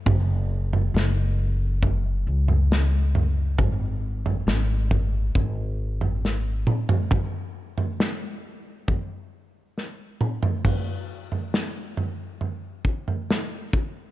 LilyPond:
<<
  \new Staff \with { instrumentName = "Upright bass" } { \clef bass \time 4/4 \key ges \lydian \tempo 4 = 68 ges,,4 ges,,4. des,4. | aes,,4 aes,,4 aes,,4. r8 | r1 | r1 | }
  \new DrumStaff \with { instrumentName = "Drums" } \drummode { \time 4/4 <bd tomfh>8. tomfh16 sn4 <bd tomfh>8. tomfh16 sn8 tomfh8 | <bd tomfh>8. tomfh16 sn8 <bd tomfh>8 <bd tomfh>8. tomfh16 sn8 toml16 tomfh16 | <bd tomfh>8. tomfh16 sn4 <bd tomfh>4 sn8 toml16 tomfh16 | <cymc bd tomfh>8. tomfh16 sn8 tomfh8 tomfh8 bd16 tomfh16 sn8 bd8 | }
>>